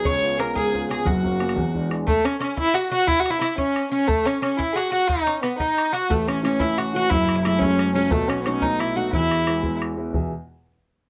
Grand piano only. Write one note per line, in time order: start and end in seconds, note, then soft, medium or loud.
0.05 1.02 C#2 medium
0.05 0.38 C#3 medium
0.22 0.37 B3 soft
0.22 0.38 C#4 soft
0.22 0.38 F4 medium
0.38 0.66 B3 soft
0.38 0.67 C#4 soft
0.38 0.67 F4 medium
0.55 0.88 G#2 medium
0.72 0.87 B3 medium
0.72 0.88 C#4 soft
0.72 0.88 F4 medium
0.89 1.02 B3 medium
0.89 1.02 C#4 soft
0.89 1.03 F4 medium
1.05 1.53 F#1 medium
1.05 1.39 F#2 medium
1.23 1.39 F#3 medium
1.23 1.39 A#3 soft
1.23 1.39 C#4 soft
1.40 1.53 F#3 medium
1.40 1.53 A#3 soft
1.40 1.54 C#4 soft
1.56 2.03 E1 medium
1.56 1.89 E2 medium
1.74 1.88 E3 soft
1.74 1.89 G#3 soft
1.74 1.89 D4 medium
1.89 2.03 E3 soft
1.89 2.03 G#3 medium
1.89 2.04 D4 medium
6.10 7.07 A1 medium
6.10 7.08 A2 medium
6.43 6.59 E3 medium
6.43 6.59 A3 soft
6.43 6.60 C#4 medium
6.61 6.92 E3 soft
6.61 6.92 A3 soft
6.61 6.92 C#4 medium
6.93 7.10 E3 medium
6.93 7.10 A3 soft
6.93 7.10 C#4 medium
7.10 8.08 F#1 medium
7.10 8.09 F#2 medium
7.44 7.60 F#3 soft
7.44 7.60 G#3 soft
7.44 7.61 A3 medium
7.62 7.95 F#3 medium
7.62 7.95 G#3 medium
7.62 7.95 A3 medium
7.96 8.12 F#3 medium
7.96 8.12 G#3 soft
7.96 8.12 A3 medium
8.12 9.09 B1 medium
8.12 9.10 B2 medium
8.46 8.61 A3 medium
8.46 8.61 B3 medium
8.46 8.62 D#4 medium
8.62 8.95 A3 medium
8.62 8.94 B3 soft
8.62 8.96 D#4 medium
8.96 9.13 A3 medium
8.96 9.12 B3 soft
8.96 9.13 D#4 medium
9.13 10.11 E1 medium
9.13 10.11 E2 medium
9.47 9.61 G#3 medium
9.47 9.61 B3 medium
9.47 9.62 E4 medium
9.62 9.95 G#3 medium
9.62 9.96 B3 soft
9.62 9.96 E4 medium
9.97 10.13 G#3 soft
9.97 10.13 B3 soft
9.97 10.14 E4 medium
10.13 10.30 E2 medium
10.13 10.30 B2 soft
10.13 10.30 E3 soft
10.13 10.31 B3 soft
10.13 10.31 G#4 medium
10.13 10.31 E5 medium